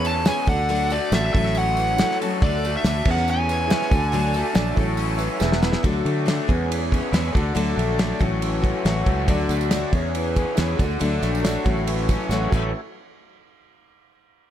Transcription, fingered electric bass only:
0.00 0.29 E2 loud
0.47 0.98 D2 loud
1.12 1.29 A1 medium
1.35 2.02 A1 loud
2.42 2.75 D2 loud
2.84 3.01 D2 loud
3.06 3.73 E2 loud
3.92 4.42 D2 loud
4.56 4.72 A#1 medium
4.77 5.28 A1 loud
5.41 5.75 E1 loud
5.84 6.01 D2 medium
6.05 6.39 D3 medium
6.49 7.00 E2 medium
7.13 7.30 E2 medium
7.35 7.52 D2 medium
7.56 7.73 D2 medium
7.77 8.12 A#1 medium
8.21 8.72 A1 loud
8.85 9.02 A1 medium
9.07 9.28 C#2 medium
9.28 9.45 D2 medium
9.49 9.83 D2 medium
9.93 10.44 E2 loud
10.58 10.75 E2 medium
10.79 10.96 D2 medium
11.01 11.18 D2 loud
11.22 11.56 A#1 medium
11.65 12.16 A1 loud
12.29 12.46 A1 medium
12.52 12.72 A1 loud

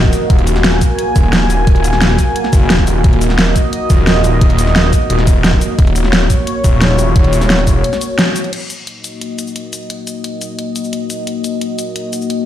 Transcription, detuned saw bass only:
0.00 0.12 D#1 loud
0.30 0.80 D#1 loud
1.16 1.66 D#1 loud
1.67 2.17 D#1 loud
2.53 2.69 F#1 loud
2.70 3.03 D#1 loud
3.04 3.54 D#1 loud
3.90 4.40 D#1 loud
4.41 4.92 D#1 loud
5.10 5.60 D#1 medium
5.79 6.29 D#1 loud
6.64 7.14 D#1 loud
7.16 7.66 D#1 loud
7.67 7.83 E1 loud

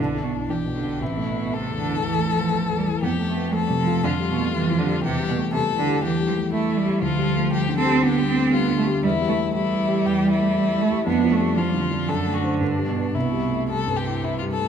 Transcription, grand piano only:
0.00 0.98 B1 soft
0.15 0.43 D4 soft
0.33 0.50 E4 soft
0.50 0.77 D4 soft
0.66 0.94 B2 soft
0.83 1.00 D4 soft
1.00 1.99 A1 soft
1.17 1.45 A3 soft
1.35 1.52 B3 soft
1.51 1.79 A3 soft
1.69 1.96 E2 soft
1.85 2.12 E4 soft
2.02 2.29 E2 soft
2.19 2.46 A3 soft
2.35 2.52 B3 soft
2.52 2.79 A3 soft
2.69 2.96 E2 soft
2.86 3.03 E4 soft
3.02 4.00 F2 soft
3.19 3.47 A3 soft
3.36 3.53 B3 soft
3.53 3.80 A3 soft
3.70 3.96 C3 soft
3.86 4.03 F4 soft
4.04 5.00 F2 soft
4.20 4.46 G3 soft
4.37 4.53 A3 soft
4.53 4.79 G3 soft
4.70 4.96 F3 soft
4.86 5.03 G4 soft
5.03 6.00 E2 medium
5.19 5.46 G3 soft
5.37 5.53 A3 soft
5.53 5.80 G3 soft
5.70 5.96 E3 soft
5.86 6.13 G4 soft
6.03 6.99 E2 soft
6.20 6.46 G3 soft
6.37 6.53 A3 soft
6.52 6.79 G3 soft
6.69 6.95 E3 soft
6.85 7.02 G4 soft
7.02 7.99 D2 medium
7.19 7.45 G3 soft
7.37 7.53 A3 soft
7.52 7.79 G3 soft
7.69 7.96 D3 soft
7.85 8.12 G4 soft
8.02 8.29 D3 soft
8.19 8.46 G3 soft
8.35 8.52 A3 soft
8.52 8.80 G3 soft
8.69 8.97 D3 soft
8.87 9.04 G4 soft
9.05 10.03 E2 medium
9.21 9.48 G3 soft
9.39 9.55 A3 soft
9.55 9.82 G3 soft
9.72 9.99 E3 soft
9.89 10.16 G4 soft
10.06 11.04 E2 soft
10.22 10.49 G3 soft
10.39 10.56 A3 soft
10.56 10.83 G3 soft
10.73 11.00 E3 soft
10.90 11.07 G4 soft
11.07 12.06 F2 medium
11.24 11.51 F3 soft
11.42 11.58 G3 soft
11.58 11.85 F3 soft
11.74 12.02 D3 soft
11.91 12.09 D4 soft
12.09 12.59 F#2 soft
12.26 12.54 A3 soft
12.44 12.59 D4 soft
12.44 12.59 C5 soft
12.61 13.13 G2 soft
12.78 13.07 G3 soft
12.96 13.13 D4 soft
12.96 13.13 B4 soft
13.15 14.21 C2 soft
13.33 13.62 G3 soft
13.51 13.70 A3 soft
13.69 13.99 G3 soft
13.87 14.17 G2 soft
14.06 14.35 E4 soft
14.24 14.53 G2 soft
14.42 14.68 G3 soft
14.60 14.68 A3 soft

